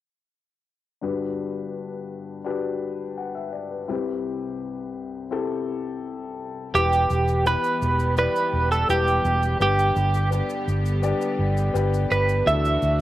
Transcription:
1.02 3.85 G1 soft
1.02 3.85 G2 soft
1.02 2.38 D4 medium
1.02 2.38 F#4 soft
1.02 2.38 G4 soft
1.02 2.39 B4 medium
2.44 3.81 D4 medium
2.44 3.81 F#4 medium
2.44 3.81 G4 medium
2.44 3.17 B4 medium
3.17 3.34 F#5 soft
3.35 3.52 E5 medium
3.53 3.70 D5 soft
3.71 3.88 B4 soft
3.88 6.71 C2 medium
3.88 6.71 C3 soft
3.88 5.24 C4 medium
3.88 5.24 E4 medium
3.88 5.24 G4 medium
3.88 5.25 B4 medium
5.31 6.67 C4 medium
5.31 6.67 E4 medium
5.31 6.68 G4 medium
5.31 6.68 A4 medium
6.74 7.04 E1 loud
6.74 7.78 E3 medium
6.74 9.58 E3 medium
6.74 9.58 G3 medium
6.74 7.42 B3 medium
6.74 9.58 B3 medium
6.74 7.42 E4 medium
6.74 7.43 G4 medium
6.74 12.42 G4 medium
6.74 7.47 G4 medium
6.74 7.43 B4 medium
6.74 shaker medium
6.93 shaker medium
7.10 7.54 E1 loud
7.10 shaker soft
7.28 shaker soft
7.45 8.14 B3 medium
7.45 8.14 E4 medium
7.45 8.14 G4 medium
7.45 8.14 B4 medium
7.45 shaker medium
7.64 shaker soft
7.82 8.26 E1 medium
7.82 shaker soft
7.99 shaker soft
8.17 8.85 B3 medium
8.17 8.85 E4 medium
8.17 8.86 G4 medium
8.17 8.71 B4 medium
8.17 8.86 D5 medium
8.17 shaker soft
8.36 shaker soft
8.53 8.83 E1 medium
8.72 8.90 A4 medium
8.72 shaker soft
8.89 9.19 E1 medium
8.89 9.57 B3 medium
8.89 9.57 E4 medium
8.89 9.57 G4 medium
8.89 9.57 B4 medium
8.89 shaker medium
9.07 shaker soft
9.25 9.54 E1 medium
9.25 shaker soft
9.43 shaker soft
9.60 9.90 G1 loud
9.60 10.64 G2 medium
9.60 12.44 D3 medium
9.60 12.44 G3 medium
9.60 10.28 B3 medium
9.60 12.44 B3 medium
9.60 10.28 D4 medium
9.60 10.28 G4 medium
9.60 10.29 G4 medium
9.60 10.29 B4 medium
9.60 shaker medium
9.79 shaker medium
9.96 10.40 G1 loud
9.96 shaker soft
10.14 shaker soft
10.31 10.99 B3 medium
10.31 10.99 D4 medium
10.31 11.00 G4 medium
10.31 11.00 B4 medium
10.31 shaker medium
10.50 shaker soft
10.68 11.12 G1 medium
10.68 shaker soft
10.86 shaker soft
11.02 11.71 B3 medium
11.02 11.71 D4 medium
11.02 11.71 G4 medium
11.02 11.71 D5 medium
11.02 shaker medium
11.21 shaker soft
11.39 11.68 G1 medium
11.57 shaker soft
11.74 12.04 G1 medium
11.74 12.42 B3 medium
11.74 12.42 D4 medium
11.74 12.43 G4 medium
11.74 12.43 B4 medium
11.74 shaker medium
11.94 shaker soft
12.11 12.40 G1 medium
12.11 12.48 B4 medium
12.11 shaker soft
12.29 shaker soft
12.45 12.76 D2 loud
12.45 13.01 D3 medium
12.45 13.01 E3 medium
12.45 13.01 A3 medium
12.45 13.01 D4 medium
12.45 13.01 E4 medium
12.45 13.01 F#4 medium
12.45 13.01 A4 medium
12.45 13.01 E5 loud
12.45 shaker medium
12.65 shaker medium
12.82 13.01 D2 medium
12.82 shaker soft

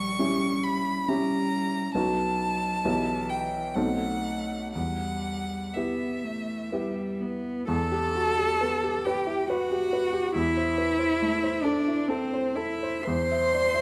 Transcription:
0.00 0.18 A#1 medium
0.00 1.04 G3 medium
0.00 0.65 C#6 loud
0.19 1.04 C#4 medium
0.19 1.04 E4 medium
0.19 1.04 G4 medium
0.64 1.10 B5 medium
1.08 1.93 G3 medium
1.08 1.91 C#4 medium
1.08 1.91 E4 medium
1.08 1.92 G4 medium
1.08 1.93 A#5 loud
1.94 2.82 B1 medium
1.94 2.86 F#3 medium
1.94 2.80 B3 soft
1.94 2.81 D#4 soft
1.94 2.81 F#4 soft
1.94 3.31 A5 loud
2.84 3.73 B1 medium
2.84 3.76 E3 medium
2.84 3.72 B3 soft
2.84 3.72 E4 soft
2.84 3.73 G4 soft
3.30 3.77 G5 medium
3.75 4.72 B1 medium
3.75 4.75 A3 medium
3.75 4.71 C4 soft
3.75 4.71 D#4 soft
3.75 4.71 A4 soft
3.75 4.72 F#5 medium
4.73 5.74 E2 medium
4.73 5.75 G3 medium
4.73 5.75 F#5 medium
5.74 6.25 B3 medium
5.74 6.68 B3 soft
5.74 6.69 E4 soft
5.74 6.69 G4 soft
5.74 7.19 E5 medium
6.23 6.73 A3 medium
6.71 7.22 G3 medium
6.71 7.64 B3 soft
6.71 7.64 E4 soft
6.71 7.65 G4 soft
7.20 7.67 B3 medium
7.68 10.32 E2 medium
7.68 9.06 A4 loud
7.68 9.01 A5 loud
7.92 8.29 G4 medium
8.15 8.38 F#4 medium
8.38 8.74 G4 medium
8.61 8.97 B3 medium
8.83 9.19 G4 medium
9.05 9.49 G4 medium
9.05 9.41 B4 medium
9.05 9.50 G5 medium
9.27 9.62 E4 medium
9.48 10.34 F#4 medium
9.48 9.85 B4 medium
9.48 10.34 F#5 medium
9.71 10.06 G4 medium
9.93 10.27 B4 medium
10.13 10.35 G4 medium
10.35 13.01 E2 medium
10.35 11.64 E4 loud
10.35 11.66 E5 loud
10.57 10.92 C5 medium
10.78 11.00 B4 soft
10.99 11.34 C5 medium
11.22 11.57 A3 medium
11.43 11.78 C5 medium
11.63 12.10 D4 medium
11.63 12.00 A4 medium
11.63 12.09 D5 medium
11.88 12.23 E4 medium
12.08 12.57 C4 medium
12.08 12.47 A4 medium
12.08 12.57 C5 medium
12.34 12.72 C5 medium
12.55 13.06 E4 medium
12.55 12.96 A4 medium
12.55 13.05 E5 medium
12.83 13.06 C5 medium
13.04 13.81 E2 medium
13.04 13.81 C5 loud
13.04 13.81 C6 loud
13.31 13.65 E5 soft
13.54 13.74 D5 soft
13.74 13.81 E5 medium

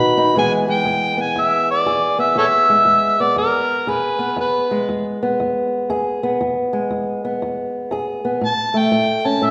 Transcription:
0.00 0.31 B2 medium
0.00 0.33 D#3 medium
0.00 0.34 B3 medium
0.00 0.16 D#4 medium
0.00 0.34 F#4 medium
0.00 0.35 B5 loud
0.17 0.33 D#4 medium
0.35 0.82 E2 medium
0.35 3.86 E3 medium
0.35 0.68 G#3 medium
0.35 1.17 B3 medium
0.35 1.86 G#4 medium
0.35 0.53 G#5 loud
0.68 2.69 G#3 soft
0.68 1.23 G5 loud
0.85 1.32 E2 medium
1.17 2.18 B3 medium
1.22 1.42 G#5 medium
1.36 1.83 E2 medium
1.41 1.70 E5 loud
1.71 2.17 D5 medium
1.86 2.33 E2 medium
1.86 3.88 G#4 medium
2.19 3.20 B3 medium
2.19 2.36 E5 medium
2.35 2.83 E2 medium
2.35 2.45 A4 medium
2.35 2.47 C#5 medium
2.35 3.23 E5 loud
2.70 4.71 G#3 soft
2.85 3.33 E2 medium
3.20 4.18 B3 medium
3.20 3.37 D5 medium
3.36 3.84 E2 medium
3.36 3.91 A#4 medium
3.87 4.35 E2 medium
3.87 5.90 G#4 medium
3.87 4.40 B4 medium
4.19 5.22 B3 medium
4.36 4.85 E2 medium
4.41 4.87 B4 medium
4.71 6.39 G#3 medium
4.89 5.36 E2 medium
5.23 6.22 B3 medium
5.40 5.87 E2 medium
5.90 6.37 E2 medium
5.90 6.38 G#4 medium
6.23 7.23 B3 medium
6.41 6.88 E2 medium
6.73 8.40 G#3 medium
6.91 7.38 E2 medium
7.25 8.23 B3 medium
7.42 7.89 E2 medium
7.91 8.38 E2 medium
7.91 8.40 G#4 medium
8.25 8.43 B3 medium
8.41 8.89 A2 medium
8.41 8.79 A5 loud
8.74 9.51 A3 medium
8.74 9.28 G5 medium
8.92 9.39 A2 medium
9.25 9.51 C#4 medium
9.25 9.47 A5 medium
9.42 9.51 A2 medium
9.42 9.51 E5 loud

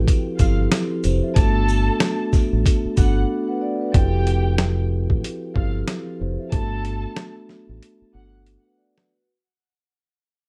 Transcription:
0.00 0.38 F3 medium
0.00 0.38 C4 medium
0.00 0.39 E4 medium
0.00 0.40 G4 medium
0.00 0.40 A4 medium
0.07 kick medium
0.07 closed hi-hat loud
0.07 sleigh bells medium
0.38 0.66 G1 medium
0.38 0.92 F3 medium
0.38 0.93 C4 medium
0.38 0.71 E4 medium
0.38 0.72 G4 medium
0.38 0.72 A4 loud
0.38 0.56 F5 medium
0.38 0.56 F6 medium
0.38 kick medium
0.38 closed hi-hat medium
0.38 shaker medium
0.38 sleigh bells medium
0.72 snare loud
0.72 closed hi-hat medium
0.72 sleigh bells medium
0.91 1.03 E4 medium
0.91 1.03 A4 medium
1.03 1.20 F1 medium
1.03 1.22 G4 medium
1.03 1.22 C5 medium
1.03 closed hi-hat medium
1.03 shaker medium
1.03 sleigh bells medium
1.23 1.37 A4 medium
1.23 1.54 E5 medium
1.36 1.89 G1 loud
1.36 1.44 A3 medium
1.36 2.40 D4 medium
1.36 2.41 F#4 medium
1.36 2.17 A4 loud
1.36 2.41 A4 loud
1.36 2.16 A5 loud
1.36 kick loud
1.36 closed hi-hat medium
1.36 sleigh bells medium
1.42 2.43 B3 medium
1.68 shaker medium
1.68 sleigh bells medium
2.00 snare loud
2.00 closed hi-hat medium
2.00 sleigh bells medium
2.33 kick medium
2.33 snare soft
2.33 shaker soft
2.33 sleigh bells medium
2.53 2.63 A1 medium
2.65 kick medium
2.65 closed hi-hat loud
2.65 sleigh bells medium
2.85 muted fingered electric bass stroke soft
2.96 3.24 G1 medium
2.96 3.51 B3 medium
2.96 3.51 D4 medium
2.96 3.30 F#4 medium
2.96 3.30 A4 medium
2.96 3.15 F#5 medium
2.96 3.16 F#6 medium
2.96 kick medium
2.96 closed hi-hat medium
2.96 shaker medium
2.96 sleigh bells medium
3.48 3.61 B4 medium
3.48 3.61 F#5 medium
3.61 3.80 A4 medium
3.61 3.80 D5 medium
3.81 4.12 F#4 medium
3.81 4.12 B4 medium
3.92 5.06 F1 loud
3.92 4.97 F3 medium
3.92 4.97 C4 medium
3.92 4.98 E4 medium
3.92 4.98 G4 medium
3.92 4.74 G4 medium
3.92 4.98 A4 medium
3.92 4.74 G5 loud
3.92 kick loud
3.92 closed hi-hat medium
4.27 closed hi-hat medium
4.58 snare loud
4.58 closed hi-hat medium
5.10 5.21 A1 medium
5.10 kick loud
5.24 closed hi-hat loud
5.54 5.82 G1 medium
5.54 6.09 F3 medium
5.54 6.09 C4 medium
5.54 5.88 E4 medium
5.54 5.88 G4 medium
5.54 5.88 A4 medium
5.54 5.73 F5 medium
5.54 5.73 F6 medium
5.54 kick medium
5.88 snare loud
5.88 closed hi-hat medium
6.07 6.20 E4 medium
6.07 6.19 A4 medium
6.20 6.36 F1 medium
6.20 6.38 G4 medium
6.20 6.38 C5 medium
6.39 6.53 A4 medium
6.39 6.70 E5 medium
6.51 7.05 G1 loud
6.51 6.60 A3 medium
6.51 7.57 D4 medium
6.51 7.57 F#4 medium
6.51 7.32 A4 medium
6.51 7.57 A4 loud
6.51 7.31 A5 loud
6.51 kick loud
6.51 closed hi-hat medium
6.59 7.60 B3 medium
6.85 closed hi-hat medium
7.17 snare loud
7.17 closed hi-hat medium
7.49 snare soft
7.69 7.79 A1 medium
7.83 closed hi-hat loud
8.02 muted fingered electric bass stroke soft
8.12 8.56 G1 loud
8.12 8.67 B3 medium
8.12 8.67 D4 medium
8.12 8.46 F#4 medium
8.12 8.46 A4 medium
8.12 8.31 F#5 medium
8.12 8.32 F#6 medium
8.46 closed hi-hat medium
8.64 8.77 B4 medium
8.64 8.77 F#5 medium
8.77 8.96 A4 medium
8.77 8.96 D5 medium
8.97 9.28 F#4 soft
8.97 9.28 B4 medium
8.97 snare medium

